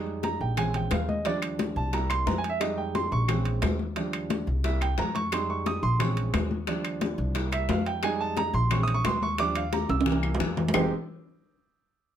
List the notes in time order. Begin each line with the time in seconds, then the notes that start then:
Already playing: F2 G3 G#3 D#4
0.07 high conga
0.23 A#5, high bongo, high conga, high timbale, low timbale
0.41 A#1 G5, high conga
0.57 C#3 G#3 C4 G#5, high bongo, high conga, low conga, high timbale, claves
0.74 G5, high conga, low conga, high timbale
0.91 D#2 F5, high bongo, low bongo, high conga, high timbale, low timbale, claves
1.09 D#5, high conga
1.25 F3 G3 D4 D5, high bongo, high conga, high timbale
1.42 high conga, high timbale, claves
1.59 high bongo, high conga, high timbale, low timbale
1.76 C2 A5, high bongo
1.92 G3 A#3 E4 A#5, high bongo, high conga, high timbale
2.10 C6, high bongo, high conga, high timbale, claves
2.27 F2 A#5, high bongo, low bongo, high conga, low timbale
2.38 G#5
2.44 high bongo, high timbale
2.50 E5
2.60 G3 G#3 D#4 D#5, high bongo, high conga, high timbale, claves
2.78 G5, high conga
2.95 C6, high bongo, high conga, high timbale, low timbale
3.12 A#1 C#6, high conga
3.28 C#3 G#3 C4, high bongo, high conga, low conga, high timbale, claves
3.45 high conga, high timbale
3.62 D#2, high bongo, low bongo, high conga, high timbale, low timbale, claves
3.79 high conga
3.96 F3 G3 D4, high bongo, high conga, high timbale
4.13 high conga, high timbale, claves
4.30 high bongo, high conga, high timbale, low timbale
4.47 C2, high bongo
4.64 G3 A#3 E4 E5, high bongo, high conga, high timbale
4.81 G5, high bongo, high conga, high timbale, claves
4.98 F2 A#5, high bongo, low bongo, high conga, low timbale
5.15 C#6, high bongo, high conga, high timbale
5.32 G3 G#3 D#4 C6, high bongo, high conga, high timbale, claves
5.49 C#6, high conga
5.66 D#6, high bongo, high conga, high timbale, low timbale
5.83 A#1 C6, high conga
5.99 C#3 G#3 C4 C#6, high bongo, high conga, low conga, high timbale, claves
6.17 high conga, high timbale
6.34 D#2, high bongo, low bongo, high conga, high timbale, low timbale, claves
6.51 high conga
6.67 F3 G3 D4, high bongo, high conga, high timbale
6.84 high conga, high timbale, claves
7.01 high bongo, high conga, high timbale, low timbale
7.18 C2, high bongo
7.35 G3 A#3 E4, high bongo, high conga, high timbale
7.52 E5, high bongo, high conga, high timbale, claves
7.69 F2 F5, high bongo, low bongo, high conga, low timbale
7.86 G5, high bongo, high timbale
8.03 G3 G#3 D#4 G#5, high bongo, high conga, high timbale, claves
8.20 A5, high conga
8.37 A#5, high bongo, high conga, high timbale, low timbale
8.54 A#1 C6, high conga
8.71 C#3 G#3 C4 C#6, high bongo, high conga, low conga, high timbale, claves
8.83 D#6
8.88 high conga, high timbale
8.94 C#6
9.05 D#2 C6, high bongo, low bongo, high conga, high timbale, low timbale, claves
9.22 C#6, high conga
9.38 F3 G3 D4 D6, high bongo, high conga, high timbale
9.55 F5, high conga, high timbale, claves
9.73 A#5, high bongo, high conga, high timbale, low timbale
9.89 C2 E6, high bongo, high timbale
10.01 high timbale
10.06 E3 G3 A#3, high bongo, low conga
10.12 high timbale
10.23 high bongo, low conga, claves
10.35 low timbale
10.40 F2, high bongo, low bongo, low conga
10.57 high bongo, low conga, low timbale
10.68 low timbale
10.74 F1 G#3 C4 D#4 G4, low bongo, low conga, low timbale, claves